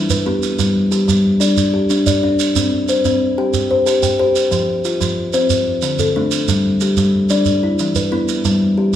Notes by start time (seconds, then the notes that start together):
Already playing: E3 E4
0.10 B4, shekere
0.26 B3 G4
0.43 shekere
0.59 G3, shekere
0.92 G4, shekere
1.08 G3, shekere
1.40 D4 D5, shekere
1.57 shekere
1.74 G4
1.90 D4, shekere
2.07 D5, shekere
2.23 D4
2.39 shekere
2.56 C4, shekere
2.88 C5, shekere
3.05 C4, shekere
3.38 G4 G5
3.54 shekere
3.71 C5
3.86 G4, shekere
4.03 G5, shekere
4.19 G4 C5
4.36 shekere
4.51 F3, shekere
4.84 F4, shekere
5.01 F3, shekere
5.33 C4 C5, shekere
5.50 shekere
5.82 D3, shekere
5.99 A4, shekere
6.16 A3 D4
6.31 shekere
6.48 G3, shekere
6.81 G4, shekere
6.97 G3, shekere
7.29 D4 D5, shekere
7.45 shekere
7.63 E4
7.79 E3, shekere
7.95 B4, shekere
8.12 B3 E4
8.28 shekere
8.45 G3, shekere
8.78 G4